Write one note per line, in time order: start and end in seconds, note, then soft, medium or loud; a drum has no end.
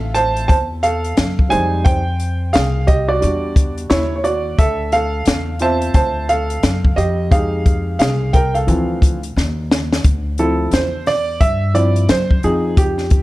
0.00 0.46 A1 medium
0.00 1.47 C4 soft
0.00 1.47 F4 medium
0.00 0.11 A4 medium
0.00 1.48 E5 medium
0.00 0.17 F5 medium
0.14 0.47 C5 medium
0.14 0.47 A5 loud
0.14 closed hi-hat medium
0.36 closed hi-hat medium
0.48 1.14 E2 medium
0.48 0.57 C5 medium
0.48 0.56 A5 medium
0.48 kick medium
0.48 closed hi-hat medium
0.83 1.48 A4 medium
0.83 1.47 F5 medium
0.83 closed hi-hat medium
1.04 closed hi-hat soft
1.17 1.50 F#2 medium
1.17 snare loud
1.17 closed hi-hat medium
1.39 kick medium
1.49 2.51 F2 loud
1.49 1.99 G3 medium
1.49 1.99 G#3 soft
1.49 1.99 D#4 medium
1.49 1.83 C5 medium
1.49 1.86 G#5 loud
1.49 closed hi-hat medium
1.84 2.49 C5 medium
1.84 2.56 G5 medium
1.84 kick loud
1.84 closed hi-hat medium
2.20 closed hi-hat medium
2.53 3.19 C2 medium
2.53 2.85 G#4 medium
2.53 2.85 F5 medium
2.53 snare loud
2.53 closed hi-hat medium
2.87 3.07 G4 medium
2.87 3.07 D#5 medium
2.87 kick medium
2.87 closed hi-hat medium
3.08 3.20 F#4 medium
3.08 3.73 D5 medium
3.21 3.88 E2 loud
3.21 4.20 G3 medium
3.21 4.20 D4 soft
3.21 4.20 F#4 medium
3.21 closed hi-hat medium
3.56 kick medium
3.56 closed hi-hat medium
3.78 closed hi-hat medium
3.90 4.55 D#2 loud
3.90 4.17 E4 medium
3.90 4.14 C#5 medium
3.90 snare loud
3.90 closed hi-hat medium
4.16 4.23 C#5 medium
4.24 4.56 F#4 medium
4.24 4.59 D5 medium
4.24 closed hi-hat medium
4.58 5.24 D2 loud
4.58 4.90 A4 medium
4.58 4.94 E5 medium
4.58 kick loud
4.58 closed hi-hat medium
4.92 5.57 A4 medium
4.92 5.57 F5 loud
4.92 closed hi-hat medium
5.25 5.92 E2 medium
5.25 snare loud
5.25 closed hi-hat medium
5.59 6.59 C4 medium
5.59 6.59 F4 medium
5.59 5.93 C5 medium
5.59 6.60 E5 medium
5.59 5.93 A5 medium
5.59 closed hi-hat medium
5.82 closed hi-hat medium
5.94 6.60 D2 medium
5.94 6.27 C5 medium
5.94 6.27 A5 medium
5.94 kick medium
5.94 closed hi-hat medium
6.29 6.94 A4 medium
6.29 6.99 F5 loud
6.29 closed hi-hat medium
6.50 closed hi-hat medium
6.63 6.96 F#2 medium
6.63 snare loud
6.63 closed hi-hat medium
6.85 kick medium
6.96 7.96 F2 loud
6.96 7.29 G4 medium
6.96 7.32 D#5 medium
6.96 closed hi-hat medium
7.31 8.30 G#3 medium
7.31 8.30 D#4 medium
7.31 8.29 G4 medium
7.31 7.96 G#4 medium
7.31 7.96 F5 medium
7.31 kick loud
7.31 closed hi-hat medium
7.66 kick medium
7.66 closed hi-hat medium
7.99 8.65 C2 medium
7.99 8.31 G#4 medium
7.99 8.35 F5 medium
7.99 snare loud
7.99 closed hi-hat medium
8.33 8.54 A#4 medium
8.33 8.55 G5 medium
8.33 kick medium
8.33 closed hi-hat medium
8.54 9.19 A4 medium
8.54 9.19 F5 medium
8.54 closed hi-hat medium
8.67 9.33 D2 loud
8.67 9.17 E3 medium
8.67 9.16 F3 medium
8.67 9.16 C4 soft
8.67 closed hi-hat medium
9.02 kick medium
9.02 closed hi-hat medium
9.23 closed hi-hat medium
9.36 10.01 D#2 loud
9.36 snare medium
9.71 snare loud
9.93 snare medium
10.04 10.69 D2 medium
10.04 kick loud
10.04 closed hi-hat medium
10.38 10.87 F3 medium
10.38 10.87 C4 soft
10.38 10.87 E4 medium
10.38 10.74 A4 medium
10.38 closed hi-hat medium
10.71 11.37 E2 medium
10.71 11.08 C5 medium
10.71 snare loud
10.71 closed hi-hat medium
11.06 11.42 D5 loud
11.06 snare soft
11.06 open hi-hat medium
11.41 12.05 G2 loud
11.41 11.72 E5 loud
11.41 kick medium
11.41 closed hi-hat medium
11.74 12.05 F3 soft
11.74 12.05 C4 soft
11.74 12.05 E4 medium
11.74 12.06 D5 medium
11.74 closed hi-hat medium
11.96 closed hi-hat medium
12.09 12.41 F#2 loud
12.09 12.41 C5 loud
12.09 snare loud
12.09 closed hi-hat medium
12.31 kick medium
12.43 13.23 F2 medium
12.43 13.23 F3 soft
12.43 13.23 C4 soft
12.43 13.23 D#4 medium
12.43 12.79 G#4 medium
12.43 closed hi-hat medium
12.77 13.23 G4 medium
12.77 kick loud
12.77 closed hi-hat medium
12.98 snare soft
13.10 kick medium
13.10 closed hi-hat medium